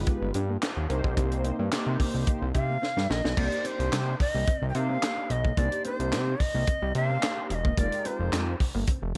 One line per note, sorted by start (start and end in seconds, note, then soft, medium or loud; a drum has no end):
0.00 0.27 G#3 medium
0.00 0.88 B3 medium
0.00 0.27 D#4 medium
0.00 0.27 F4 medium
0.00 0.88 F4 medium
0.00 0.87 G4 medium
0.00 0.31 B4 loud
0.07 muted clean electric guitar stroke soft
0.07 kick loud
0.07 closed hi-hat medium
0.22 0.32 G1 loud
0.34 0.57 G2 medium
0.34 0.43 D4 medium
0.34 closed hi-hat medium
0.49 0.57 A#3 medium
0.62 0.70 B3 medium
0.62 snare loud
0.62 clap medium
0.62 closed hi-hat loud
0.77 0.87 D#2 medium
0.89 1.02 C2 loud
0.89 3.35 C3 medium
0.89 1.56 A#3 loud
0.89 3.35 A#3 medium
0.89 1.56 D#4 medium
0.89 3.35 D#4 medium
0.89 1.56 G4 medium
0.89 1.56 C5 loud
0.89 muted clean electric guitar stroke soft
0.89 closed hi-hat medium
1.04 1.15 B1 loud
1.04 1.11 C4 medium
1.04 kick medium
1.17 1.52 C2 loud
1.17 kick loud
1.17 closed hi-hat medium
1.32 muted clean electric guitar stroke soft
1.32 closed hi-hat soft
1.44 1.53 C4 medium
1.44 closed hi-hat medium
1.59 1.70 G2 medium
1.59 1.66 A#3 medium
1.72 1.78 C3 soft
1.72 2.47 A#3 medium
1.72 2.47 D#4 medium
1.72 2.48 G4 medium
1.72 2.48 C5 medium
1.72 snare loud
1.72 clap medium
1.72 closed hi-hat medium
1.87 1.97 C3 medium
2.00 2.08 C4 medium
2.00 kick medium
2.00 open hi-hat medium
2.14 2.25 C2 medium
2.27 muted clean electric guitar stroke soft
2.27 kick loud
2.27 closed hi-hat loud
2.42 2.52 C2 medium
2.54 2.78 C3 loud
2.54 2.63 D#4 medium
2.54 3.13 F5 loud
2.54 kick medium
2.54 closed hi-hat medium
2.69 2.77 A#3 medium
2.82 2.90 C4 medium
2.82 snare medium
2.97 3.08 G2 medium
2.97 snare medium
3.10 3.22 A#1 loud
3.10 3.40 D#5 loud
3.10 muted clean electric guitar stroke soft
3.10 snare medium
3.24 3.35 B1 medium
3.24 3.32 D#4 medium
3.24 snare medium
3.37 3.49 C2 loud
3.37 4.12 A#3 medium
3.37 3.46 A#3 medium
3.37 4.12 D4 medium
3.37 4.13 D#4 medium
3.37 4.13 G4 medium
3.37 4.13 C5 medium
3.37 3.68 D5 loud
3.37 kick loud
3.37 crash loud
3.52 closed hi-hat medium
3.65 3.73 C4 medium
3.65 4.20 C5 loud
3.65 closed hi-hat medium
3.79 3.90 C2 medium
3.79 muted clean electric guitar stroke soft
3.79 closed hi-hat soft
3.92 4.15 C3 medium
3.92 4.01 G3 medium
3.92 snare loud
3.92 clap medium
3.92 closed hi-hat loud
4.07 muted clean electric guitar stroke soft
4.20 4.65 D#5 loud
4.20 kick loud
4.20 open hi-hat medium
4.34 4.45 C2 medium
4.34 4.42 A#3 medium
4.47 4.56 C4 medium
4.47 kick loud
4.47 closed hi-hat loud
4.62 4.73 C2 medium
4.62 muted clean electric guitar stroke soft
4.69 4.78 G5 medium
4.74 4.98 C3 loud
4.74 5.31 A#3 medium
4.74 5.31 D4 medium
4.74 5.31 D#4 medium
4.74 5.31 G4 medium
4.74 5.31 C5 medium
4.74 5.33 F5 loud
4.74 closed hi-hat medium
4.89 4.97 C4 medium
5.02 5.11 A#3 medium
5.02 snare loud
5.02 clap medium
5.02 closed hi-hat loud
5.17 muted clean electric guitar stroke soft
5.30 5.53 B1 loud
5.30 5.60 D#5 medium
5.30 closed hi-hat medium
5.44 5.52 A#3 medium
5.44 kick medium
5.57 5.69 C2 loud
5.57 6.33 A#3 medium
5.57 5.66 A#3 medium
5.57 6.33 D4 medium
5.57 6.33 D#4 medium
5.57 6.33 G4 medium
5.57 6.33 C5 medium
5.57 5.85 D5 loud
5.57 kick loud
5.57 closed hi-hat medium
5.72 closed hi-hat medium
5.84 5.93 C4 medium
5.84 6.43 C5 loud
5.84 closed hi-hat medium
6.00 6.14 C2 medium
6.00 muted clean electric guitar stroke soft
6.00 closed hi-hat medium
6.12 6.35 C3 loud
6.12 6.21 G3 medium
6.12 snare medium
6.12 clap medium
6.12 closed hi-hat loud
6.27 muted clean electric guitar stroke soft
6.40 6.96 D#5 loud
6.40 kick medium
6.40 open hi-hat medium
6.54 6.65 C2 medium
6.54 6.62 A#3 medium
6.67 6.76 C4 medium
6.67 kick loud
6.67 closed hi-hat medium
6.82 6.93 C2 loud
6.82 muted clean electric guitar stroke soft
6.94 7.18 C3 loud
6.94 7.51 A#3 medium
6.94 7.51 D4 medium
6.94 7.51 D#4 medium
6.94 7.51 G4 medium
6.94 7.52 C5 medium
6.94 7.47 F5 loud
6.94 closed hi-hat medium
7.10 7.17 C4 medium
7.22 7.31 A#3 medium
7.22 snare loud
7.22 clap medium
7.22 closed hi-hat loud
7.37 muted clean electric guitar stroke soft
7.50 7.73 E1 medium
7.50 7.56 F5 medium
7.50 closed hi-hat medium
7.55 7.80 D#5 loud
7.65 7.72 A#3 medium
7.65 kick medium
7.77 7.90 F1 loud
7.77 8.53 G#3 medium
7.77 7.86 A#3 medium
7.77 8.53 D#4 medium
7.77 8.53 F4 medium
7.77 8.53 G4 medium
7.77 8.53 A#4 medium
7.77 8.08 D5 loud
7.77 kick loud
7.77 closed hi-hat medium
7.92 closed hi-hat medium
8.05 8.14 C4 medium
8.05 8.61 C5 medium
8.05 closed hi-hat medium
8.20 8.30 F1 loud
8.20 muted clean electric guitar stroke soft
8.32 8.55 F2 loud
8.32 8.41 G#3 medium
8.32 snare medium
8.32 clap medium
8.32 closed hi-hat loud
8.60 kick loud
8.60 open hi-hat medium
8.75 8.85 G1 loud
8.75 8.82 A#3 medium
8.87 8.96 C4 medium
8.87 kick loud
8.87 closed hi-hat loud
9.02 9.13 F1 loud
9.02 muted clean electric guitar stroke soft